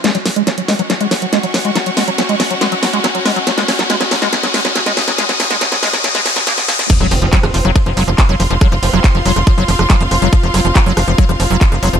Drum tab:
CC |----------------|----------------|----------------|----------------|
RD |----------------|----------------|----------------|----------------|
HH |xxoxxxoxxxoxxxox|xxoxxxoxxxoxxxox|xxoxxxoxxxoxxxox|xxoxxxoxxxoxxxox|
CP |----------------|----------------|----------------|----------------|
SD |o-o-o-o-o-o-o-o-|o-o-o-o-o-o-o-o-|oooooooooooooooo|oooooooooooooooo|
BD |----------------|----------------|----------------|----------------|

CC |x---------------|----------------|----------------|
RD |x---x---x---x---|x---x---x---x---|x---x---x---x---|
HH |xxoxxxoxxxoxxxox|xxoxxxoxxxoxxxox|xxoxxxoxxxoxxxox|
CP |----x-------x---|----x-------x---|----x-------x---|
SD |-r---r--r---r---|r--r---r---r--r-|--r---r--r---r--|
BD |o---o---o---o---|o---o---o---o---|o---o---o---o---|